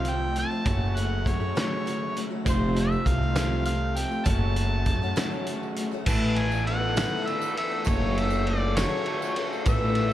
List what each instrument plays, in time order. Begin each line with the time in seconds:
Already playing: upright bass C2, overdriven electric guitar F3 A3 C4 F4, grand piano F4 A4 C5, harmonica F5
0.05 twelve-string acoustic guitar F3 A3 C4 F4, closed hi-hat
0.10 harmonica G5
0.36 twelve-string acoustic guitar F3 A3 C4 F4, harmonica A5, closed hi-hat
0.51 twelve-string acoustic guitar F3 A3 C4 F4
0.65 upright bass F#1, twelve-string acoustic guitar F#2 C#3 F#3 A3 C#4 F#4, grand piano F#4 A4 C#5, kick, closed hi-hat
0.96 twelve-string acoustic guitar F#3 A3 C#4 F#4, harmonica F#5, closed hi-hat
1.25 upright bass F#2, twelve-string acoustic guitar F#3 A3 C#4 F#4, harmonica C#5, kick, closed hi-hat
1.40 twelve-string acoustic guitar F#3 A3 C#4 F#4
1.55 twelve-string acoustic guitar F#2 C#3 F#3 A3 C#4 F#4, grand piano F#4 A4 C#5, harmonica C#5, snare, closed hi-hat
1.86 twelve-string acoustic guitar F#3 A3 C#4 F#4, closed hi-hat
2.16 twelve-string acoustic guitar F#3 A3 C#4 F#4, closed hi-hat
2.31 twelve-string acoustic guitar F#3 A3 C#4 F#4
2.45 upright bass F1, twelve-string acoustic guitar F2 C3 F3 A3 C4 F4, grand piano F4 A4 C5, kick, closed hi-hat, tambourine
2.49 harmonica C5
2.74 twelve-string acoustic guitar F3 A3 C4 F4, closed hi-hat
2.80 harmonica E5
2.92 tambourine
3.05 upright bass C2, twelve-string acoustic guitar F3 A3 C4 F4, harmonica F5, kick, closed hi-hat
3.22 twelve-string acoustic guitar F3 A3 C4 F4
3.34 twelve-string acoustic guitar F2 C3 F3 A3, grand piano F4 A4 C5, snare, closed hi-hat, tambourine
3.38 twelve-string acoustic guitar C4 F4
3.65 twelve-string acoustic guitar F3 A3 C4 F4, harmonica F5, closed hi-hat, tambourine
3.96 twelve-string acoustic guitar F3 A3 C4 F4, harmonica G5, closed hi-hat
4.09 twelve-string acoustic guitar F3 A3 C4 F4, tambourine
4.25 upright bass F#1, twelve-string acoustic guitar F#2 C#3 F#3 A3 C#4 F#4, grand piano F#4 A4 C#5, harmonica A5, kick, closed hi-hat, tambourine
4.56 twelve-string acoustic guitar F#3 A3 C#4 F#4, closed hi-hat, tambourine
4.86 upright bass F#2, twelve-string acoustic guitar F#3 A3 C#4 F#4, kick, closed hi-hat
5.02 twelve-string acoustic guitar F#3 A3 C#4 F#4, tambourine
5.16 twelve-string acoustic guitar F#2 C#3 F#3 A3 C#4 F#4, grand piano F#4 A4 E5, snare, closed hi-hat, tambourine
5.32 tambourine
5.46 twelve-string acoustic guitar F#3 A3 C#4 F#4, closed hi-hat
5.63 tambourine
5.76 twelve-string acoustic guitar F#3 A3 C#4 F#4, closed hi-hat, tambourine
5.91 twelve-string acoustic guitar F#3 A3 C#4 F#4, tambourine
6.06 upright bass A1, twelve-string acoustic guitar A2 E3 A3 B3 A4, harmonium E3 A3 B3 A4, grand piano E4 A4 B4, harmonica A5, kick, crash, tambourine
6.36 overdriven electric guitar A3 B3 A4, harmonica G#5, ride
6.52 tambourine
6.67 twelve-string acoustic guitar E3 A3 B3 A4, harmonica F#5, ride
6.96 twelve-string acoustic guitar A2 E3 A3 B3 A4, grand piano E4 A4 B4, snare, ride, tambourine
7.25 overdriven electric guitar E3 A3 B3 A4, harmonica E5, ride, tambourine
7.41 tambourine
7.57 twelve-string acoustic guitar A3 B3 A4, harmonica E5, ride, tambourine
7.71 tambourine
7.84 upright bass F#1, twelve-string acoustic guitar F#2 C#3 F#3 A3, harmonium C#3 F#3, grand piano F#4 A4 C#5, harmonica C#5, kick, ride, tambourine
7.89 twelve-string acoustic guitar C#4 A4
8.16 overdriven electric guitar F#3 A3 C#4 A4, harmonica E5, ride
8.30 tambourine
8.47 twelve-string acoustic guitar F#3 A3, overdriven electric guitar C#4, harmonica D5, ride
8.51 twelve-string acoustic guitar A4
8.76 twelve-string acoustic guitar F#2 C#3 F#3 A3 C#4 A4, grand piano F#4 A4 C#5, harmonica C#5, snare, ride, tambourine
9.05 overdriven electric guitar F#3 A3 C#4 A4, ride
9.22 tambourine
9.36 twelve-string acoustic guitar A3 C#4 A4, ride, tambourine
9.40 twelve-string acoustic guitar F#3
9.53 tambourine
9.65 upright bass A1, twelve-string acoustic guitar A2 A3, harmonium E3 B3, grand piano E4 A4 B4, kick, ride, tambourine
9.69 twelve-string acoustic guitar E3 B3 A4, harmonica E5
9.94 overdriven electric guitar A3 B3 A4, ride